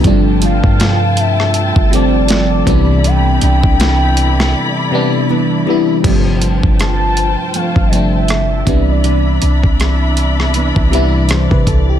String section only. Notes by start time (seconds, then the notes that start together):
0.04 F4 A4 G5 A5
2.67 E4 D5 B5
6.04 F4 C5 G5 A5
8.67 D4 D5 E5 B5